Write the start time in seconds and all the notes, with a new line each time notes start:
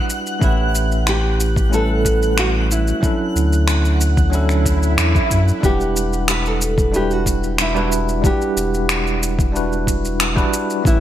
Already playing: G3 D4 E4 F#4 B4 F#5 F#6
0.10 shaker
0.27 shaker
0.39 A1 A3 C#4 E4 G4, kick, shaker
0.44 B4
0.75 shaker
0.92 shaker
1.07 G4, finger snap, shaker
1.40 shaker
1.56 kick, shaker
1.70 G3 A3 C#4 E4, shaker
1.74 A4 B4
2.05 kick, shaker
2.23 shaker
2.38 F#4, finger snap, shaker
2.71 E4, shaker
2.88 shaker
3.01 F#3 C#4 D4 E4, kick, shaker
3.05 A4
3.35 D2, shaker
3.53 shaker
3.68 finger snap, shaker
3.85 shaker
4.01 shaker
4.17 kick, shaker
4.30 F#3 C#4 D4 E4, swell, shaker
4.35 A4
4.49 finger snap, shaker
4.66 kick, shaker
4.83 shaker
4.98 E2, finger snap, shaker
5.15 kick, shaker
5.31 F#2, kick, shaker
5.48 shaker
5.61 E1 G3 D4 E4 G4 F#5, kick, shaker
5.66 B4
5.81 shaker
5.96 shaker
6.13 shaker
6.28 B4, finger snap, shaker
6.46 A4, shaker
6.61 shaker
6.78 kick, shaker
6.91 G3 D4 E4 F#4, shaker
6.96 G4 B4
7.11 F#4, shaker
7.26 kick, shaker
7.44 shaker
7.58 E4, finger snap, shaker
7.74 G3 D4 E4 F#4 B4, shaker
7.92 shaker
8.09 shaker
8.22 G3 D4 E4 F#5, kick, shaker
8.26 G4 B4
8.41 shaker
8.56 E1, shaker
8.74 shaker
8.89 finger snap, shaker
9.07 shaker
9.23 shaker
9.39 kick, shaker
9.52 G3 D4 E4 F#4, shaker
9.57 B4
9.73 shaker
9.87 kick, shaker
10.05 shaker
10.20 finger snap, shaker
10.35 G3 D4 E4 F#4 B4, kick, shaker
10.53 shaker
10.70 shaker
10.83 A1 A3 C#4 E4 G4, kick, shaker
10.87 E4 B4